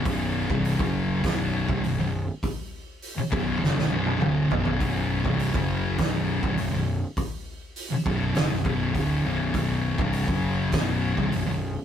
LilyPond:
<<
  \new Staff \with { instrumentName = "Distorted electric guitar" } { \clef bass \time 4/4 \key b \minor \tempo 4 = 101 <b,, fis, b,>8. <c, g, c>8 <fis, cis fis>8. <b,, fis, b,>8. <c, g,>16 <b,, fis,>16 <b,, fis,>8 r16 | r4. <b,, fis, b,>8 <fis, cis>16 <b,, fis,>16 <b,, fis, b,>8 <d, a, d>8 <b,, fis, b,>8 | <b,, fis, b,>8. <c, g, c>8 <fis, cis fis>8. <b,, fis, b,>8. <c, g,>16 <b,, fis,>16 <b,, fis,>8 r16 | r4. <b,, fis, b,>8 <fis, cis>16 <b,, fis,>16 <b,, fis, b,>8 <d, a, d>8 <b,, fis, b,>8 |
<b,, fis, b,>8. <c, g, c>8 <fis, cis fis>8. <b,, fis, b,>8. <c, g,>16 <b,, fis,>16 <b,, fis,>8 r16 | }
  \new Staff \with { instrumentName = "Distorted electric guitar" } { \clef bass \time 4/4 \key b \minor <b,, fis, b,>8. <c, g, c>8 <fis, cis fis>8. <b,, fis, b,>8. <c, g,>16 <b,, fis,>16 <b,, fis,>8 r16 | r4. <b,, fis, b,>8 <fis, cis>16 <b,, fis,>16 <b,, fis, b,>8 <d, a, d>8 <b,, fis, b,>8 | <b,, fis, b,>8. <c, g, c>8 <fis, cis fis>8. <b,, fis, b,>8. <c, g,>16 <b,, fis,>16 <b,, fis,>8 r16 | r4. <b,, fis, b,>8 <fis, cis>16 <b,, fis,>16 <b,, fis, b,>8 <d, a, d>8 <b,, fis, b,>8 |
<b,, fis, b,>8. <c, g, c>8 <fis, cis fis>8. <b,, fis, b,>8. <c, g,>16 <b,, fis,>16 <b,, fis,>8 r16 | }
  \new Staff \with { instrumentName = "Fingered electric bass" } { \clef bass \time 4/4 \key b \minor b,,,8. c,,8 fis,,8. b,,,8. c,,16 b,,,16 b,,,8 r16 | r4. b,,,8 fis,,16 b,,,16 b,,,8 d,,8 b,,,8 | b,,,8. c,,8 fis,,8. b,,,8. c,,16 b,,,16 b,,,8 r16 | r4. b,,,8 fis,,16 b,,,16 b,,,8 d,,8 b,,,8 |
b,,,8. c,,8 fis,,8. b,,,8. c,,16 b,,,16 b,,,8 r16 | }
  \new DrumStaff \with { instrumentName = "Drums" } \drummode { \time 4/4 <hho bd>8. bd16 hho16 bd8. <hho bd sn>8. bd16 hho4 | <hho bd>4 hho8 bd8 sn16 sn8 tommh16 toml8 tomfh16 tomfh16 | <hho bd>8. bd16 hho16 bd8. <hho bd sn>8. bd16 hho4 | <hho bd>4 hho8 bd8 <hho sn>8 bd8 <hho bd>4 |
<hho bd>8. bd16 hho16 bd8. <hho bd sn>8. bd16 hho4 | }
>>